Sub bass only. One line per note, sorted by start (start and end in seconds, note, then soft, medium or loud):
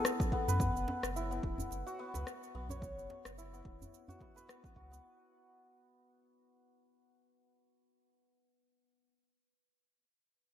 0.48 0.70 F#2 medium
0.76 0.85 F#1 medium
1.03 1.40 F#1 loud
1.43 1.67 E1 medium
1.71 1.83 F#1 medium
2.15 2.24 C#2 medium
2.55 2.93 B1 medium
2.98 3.08 F#1 medium
3.26 3.62 F#1 medium
3.65 3.88 E1 medium
4.76 4.99 C#2 loud